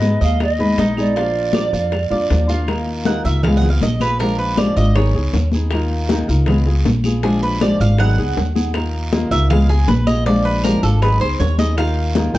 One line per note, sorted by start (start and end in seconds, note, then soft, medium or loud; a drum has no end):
0.00 0.15 G#2 medium
0.00 0.39 G#3 soft
0.00 0.40 B3 medium
0.00 0.40 D#4 soft
0.00 0.40 G#4 soft
0.00 0.20 B4 medium
0.00 0.24 D#5 medium
0.00 high bongo medium
0.00 high conga medium
0.00 short guiro medium
0.21 0.74 D#2 loud
0.21 0.58 D#5 medium
0.21 0.41 F5 medium
0.21 high bongo soft
0.21 short guiro medium
0.40 0.94 D#5 loud
0.40 muted nylon-string guitar stroke soft
0.40 high bongo medium
0.40 high conga soft
0.40 long guiro medium
0.40 claves medium
0.59 0.77 G#3 medium
0.59 0.78 B3 medium
0.59 0.78 D#4 medium
0.59 0.77 G#4 medium
0.59 0.78 B4 medium
0.59 high bongo soft
0.59 high conga soft
0.78 1.67 A#1 medium
0.78 0.96 G#3 medium
0.78 0.97 B3 medium
0.78 1.15 D#4 medium
0.78 0.97 D#4 medium
0.78 0.97 G#4 soft
0.78 high bongo medium
0.78 low bongo medium
0.78 high conga medium
0.78 short guiro medium
0.97 1.17 G#3 soft
0.97 1.16 B3 medium
0.97 1.16 D#4 medium
0.97 1.16 G#4 medium
0.97 2.46 D5 medium
0.97 high conga soft
0.97 short guiro medium
0.97 claves medium
1.16 1.54 F3 medium
1.16 1.54 A#3 medium
1.16 1.54 D4 medium
1.16 1.53 F4 medium
1.16 1.55 F4 medium
1.16 high bongo medium
1.16 high conga soft
1.16 long guiro medium
1.35 high conga soft
1.53 1.91 F3 soft
1.53 1.92 A#3 medium
1.53 1.92 D4 medium
1.53 1.92 F4 medium
1.53 1.73 D5 medium
1.53 high bongo medium
1.53 high conga loud
1.53 short guiro medium
1.53 claves medium
1.73 2.08 F2 medium
1.73 2.10 F5 medium
1.73 high bongo soft
1.73 high conga soft
1.73 short guiro medium
1.91 muted nylon-string guitar stroke medium
1.91 high bongo medium
1.91 high conga soft
1.91 long guiro medium
1.91 claves medium
2.10 2.29 F2 medium
2.10 2.29 A#3 soft
2.10 2.29 D4 medium
2.10 2.29 F4 medium
2.10 2.48 D5 medium
2.10 high bongo soft
2.10 high conga soft
2.29 3.19 D#2 medium
2.29 2.48 F3 medium
2.29 2.48 A#3 soft
2.29 2.48 D4 soft
2.29 2.48 F4 medium
2.29 high bongo medium
2.29 low bongo medium
2.29 high conga soft
2.29 short guiro medium
2.49 2.67 A#3 medium
2.49 2.68 D4 medium
2.49 2.67 F4 medium
2.49 2.68 F4 medium
2.49 high bongo soft
2.49 short guiro medium
2.67 3.05 D#3 medium
2.67 3.05 A#3 medium
2.67 3.05 D#4 medium
2.67 3.06 F4 medium
2.67 3.06 A#4 medium
2.67 high bongo medium
2.67 high conga soft
2.67 long guiro medium
2.67 claves medium
2.87 high conga soft
3.05 3.24 D#3 medium
3.05 3.24 A#3 medium
3.05 3.25 D#4 medium
3.05 3.25 F4 medium
3.05 3.24 A#4 medium
3.05 3.24 F#5 medium
3.05 high bongo medium
3.05 high conga medium
3.05 short guiro medium
3.24 3.78 C#2 loud
3.24 3.44 D#4 soft
3.24 3.44 F4 soft
3.24 3.44 A#4 soft
3.24 3.43 E5 medium
3.24 high bongo soft
3.24 high conga soft
3.24 short guiro medium
3.43 3.63 C#3 medium
3.43 3.63 G#3 medium
3.43 3.63 B3 medium
3.43 3.63 F4 medium
3.43 3.56 F5 medium
3.43 high bongo medium
3.43 high conga soft
3.43 low conga medium
3.43 long guiro medium
3.43 claves medium
3.47 3.63 G#4 medium
3.57 3.69 F#5 medium
3.62 3.82 B3 soft
3.62 3.82 F4 soft
3.62 3.82 G#4 soft
3.62 high bongo soft
3.62 high conga soft
3.62 low conga medium
3.70 3.82 F5 medium
3.81 4.71 A#1 medium
3.81 4.01 D#5 medium
3.81 muted nylon-string guitar stroke medium
3.81 high bongo soft
3.81 low bongo medium
3.81 high conga medium
3.81 short guiro medium
4.00 4.20 B3 soft
4.00 4.20 F4 soft
4.00 4.19 G#4 soft
4.00 4.19 B4 medium
4.00 high bongo soft
4.00 high conga medium
4.00 short guiro medium
4.00 claves medium
4.19 4.57 F3 medium
4.19 4.58 G#3 medium
4.19 4.58 D4 medium
4.19 4.58 F4 medium
4.19 4.38 A#4 medium
4.19 high bongo medium
4.19 high conga soft
4.19 long guiro medium
4.39 4.57 B4 medium
4.39 high conga soft
4.57 4.76 F3 medium
4.57 4.77 G#3 medium
4.57 4.76 D4 medium
4.57 4.76 F4 medium
4.57 4.76 D5 medium
4.57 high bongo medium
4.57 high conga medium
4.57 short guiro medium
4.57 claves medium
4.76 5.12 G#1 medium
4.76 4.96 G#3 soft
4.76 4.96 D4 soft
4.76 4.95 F4 medium
4.76 4.95 D#5 medium
4.76 high bongo soft
4.76 high conga soft
4.76 short guiro medium
4.95 5.14 D#3 medium
4.95 5.14 F#3 medium
4.95 5.15 B3 medium
4.95 5.15 D#4 medium
4.95 5.14 G#4 medium
4.95 5.49 C#5 medium
4.95 high bongo medium
4.95 high conga soft
4.95 long guiro medium
4.95 claves medium
5.14 5.32 C#2 medium
5.14 5.34 B3 soft
5.14 5.34 D#4 soft
5.14 5.33 G#4 soft
5.14 high bongo soft
5.14 high conga soft
5.33 6.22 D#2 medium
5.33 muted nylon-string guitar stroke medium
5.33 high bongo soft
5.33 low bongo medium
5.33 high conga soft
5.33 short guiro medium
5.52 5.72 D#4 soft
5.52 5.72 G#4 soft
5.52 high bongo soft
5.52 high conga medium
5.52 short guiro medium
5.56 5.72 B3 soft
5.71 6.09 D#3 medium
5.71 6.10 A#3 medium
5.71 6.10 D#4 medium
5.71 6.10 F4 medium
5.71 6.10 A#4 medium
5.71 high bongo medium
5.71 high conga soft
5.71 long guiro medium
5.71 claves medium
5.91 high conga soft
6.09 6.28 D#3 medium
6.09 6.28 A#3 medium
6.09 6.29 D#4 medium
6.09 6.28 F4 medium
6.09 6.27 A#4 medium
6.09 high bongo medium
6.09 high conga loud
6.09 short guiro medium
6.28 6.82 C#2 loud
6.28 6.48 D#4 soft
6.28 6.47 F4 medium
6.28 6.46 A#4 medium
6.28 high bongo soft
6.28 high conga soft
6.28 short guiro medium
6.46 6.66 C#3 medium
6.46 6.66 G#3 medium
6.46 6.66 B3 medium
6.46 6.66 F4 medium
6.46 6.66 G#4 medium
6.46 high bongo medium
6.46 high conga soft
6.46 low conga medium
6.46 long guiro medium
6.46 claves medium
6.66 6.85 B3 soft
6.66 6.85 F4 soft
6.66 6.85 G#4 soft
6.66 high bongo soft
6.66 high conga soft
6.85 7.75 A#1 medium
6.85 muted nylon-string guitar stroke medium
6.85 high bongo soft
6.85 low bongo medium
6.85 high conga medium
6.85 short guiro medium
7.04 7.23 B3 soft
7.04 7.24 F4 soft
7.04 7.23 G#4 medium
7.04 high bongo soft
7.04 high conga medium
7.04 short guiro medium
7.04 claves medium
7.23 7.60 F3 medium
7.23 7.60 G#3 medium
7.23 7.61 D4 medium
7.23 7.61 F4 medium
7.23 7.42 G#4 medium
7.23 high bongo medium
7.23 high conga soft
7.23 long guiro medium
7.42 7.61 B4 medium
7.42 high conga soft
7.61 7.79 F3 medium
7.61 7.80 G#3 medium
7.61 7.80 D4 medium
7.61 7.80 F4 medium
7.61 7.80 D5 medium
7.61 high bongo medium
7.61 high conga loud
7.61 short guiro medium
7.61 claves medium
7.80 8.15 G#1 loud
7.80 7.99 G#3 soft
7.80 7.99 D4 medium
7.80 7.99 F4 medium
7.80 7.99 F5 loud
7.80 high bongo soft
7.80 high conga soft
7.80 short guiro medium
7.98 8.17 D#3 medium
7.98 8.18 F#3 medium
7.98 8.18 B3 medium
7.98 8.18 D#4 medium
7.98 8.17 G#4 medium
7.98 8.71 F#5 medium
7.98 high bongo medium
7.98 high conga soft
7.98 long guiro medium
7.98 claves medium
8.18 8.36 C#2 medium
8.18 8.36 B3 soft
8.18 8.36 D#4 soft
8.18 8.36 G#4 medium
8.18 high bongo soft
8.18 high conga soft
8.37 9.26 D#2 medium
8.37 muted nylon-string guitar stroke medium
8.37 high bongo soft
8.37 low bongo medium
8.37 high conga soft
8.37 short guiro medium
8.55 8.75 B3 soft
8.55 8.74 D#4 soft
8.55 8.74 G#4 soft
8.55 high bongo soft
8.55 high conga medium
8.55 short guiro medium
8.74 9.12 D#3 medium
8.74 9.12 A#3 medium
8.74 9.12 D#4 medium
8.74 9.13 F4 medium
8.74 9.12 A#4 medium
8.74 high bongo medium
8.74 high conga soft
8.74 long guiro medium
8.74 claves medium
8.93 high conga soft
9.13 9.31 D#3 medium
9.13 9.31 A#3 medium
9.13 9.31 D#4 medium
9.13 9.31 F4 medium
9.13 9.30 A#4 medium
9.13 high bongo medium
9.13 high conga medium
9.13 short guiro medium
9.31 9.84 C#2 medium
9.31 9.51 D#4 soft
9.31 9.50 F4 medium
9.31 9.50 A#4 medium
9.31 9.50 E5 medium
9.31 high bongo soft
9.31 high conga soft
9.31 short guiro medium
9.50 9.69 C#3 medium
9.50 9.69 G#3 medium
9.50 9.69 B3 medium
9.50 9.69 F4 medium
9.50 9.69 G#4 medium
9.50 9.69 F5 loud
9.50 high bongo medium
9.50 high conga soft
9.50 low conga medium
9.50 long guiro medium
9.50 claves medium
9.69 9.88 B3 soft
9.69 9.88 F4 soft
9.69 9.88 G#4 medium
9.69 high bongo soft
9.69 high conga soft
9.88 10.77 A#1 medium
9.88 10.07 B4 medium
9.88 muted nylon-string guitar stroke medium
9.88 high bongo soft
9.88 low bongo medium
9.88 high conga medium
9.88 short guiro medium
10.07 10.26 B3 soft
10.07 10.26 F4 soft
10.07 10.26 G#4 soft
10.07 10.26 D#5 loud
10.07 high bongo soft
10.07 high conga medium
10.07 short guiro medium
10.07 claves medium
10.26 10.63 F3 medium
10.26 10.64 G#3 medium
10.26 10.64 D4 medium
10.26 10.64 F4 medium
10.26 10.45 D5 loud
10.26 high bongo medium
10.26 high conga soft
10.26 long guiro medium
10.45 10.63 B4 medium
10.45 high conga soft
10.64 10.82 F3 medium
10.64 10.83 G#3 medium
10.64 10.82 D4 medium
10.64 10.81 F4 medium
10.64 10.83 A#4 loud
10.64 high bongo medium
10.64 high conga loud
10.64 short guiro medium
10.64 claves medium
10.82 11.18 G#1 medium
10.82 11.02 G#3 soft
10.82 11.01 D4 medium
10.82 11.01 F4 soft
10.82 11.02 A4 medium
10.82 high bongo soft
10.82 high conga soft
10.82 short guiro medium
11.01 11.20 D#3 medium
11.01 11.20 F#3 medium
11.01 11.21 B3 medium
11.01 11.20 D#4 medium
11.01 11.19 G#4 medium
11.01 11.21 B4 medium
11.01 high bongo medium
11.01 high conga soft
11.01 long guiro medium
11.01 claves medium
11.20 11.39 C#2 medium
11.20 11.39 B3 soft
11.20 11.39 D#4 medium
11.20 11.39 G#4 soft
11.20 11.39 C5 medium
11.20 high bongo soft
11.20 high conga soft
11.39 12.29 D#2 medium
11.39 11.58 C#5 medium
11.39 muted nylon-string guitar stroke medium
11.39 high bongo soft
11.39 low bongo medium
11.39 high conga soft
11.39 short guiro medium
11.58 11.77 B3 soft
11.58 11.77 D#4 soft
11.58 11.77 G#4 medium
11.58 11.77 D#5 loud
11.58 high bongo soft
11.58 high conga medium
11.58 short guiro medium
11.77 12.14 D#3 medium
11.77 12.15 A#3 medium
11.77 12.15 D#4 medium
11.77 12.15 F4 medium
11.77 12.15 A#4 medium
11.77 12.13 F5 loud
11.77 high bongo medium
11.77 high conga soft
11.77 long guiro medium
11.77 claves medium
11.97 high conga soft
12.15 12.34 D#3 medium
12.15 12.34 A#3 medium
12.15 12.34 D#4 medium
12.15 12.34 F4 medium
12.15 12.32 A#4 medium
12.15 high bongo medium
12.15 high conga loud
12.15 short guiro medium
12.34 12.38 C#2 loud
12.34 12.38 F4 medium
12.34 12.38 A#4 medium
12.34 12.38 G5 medium
12.34 high bongo soft
12.34 high conga soft
12.34 short guiro medium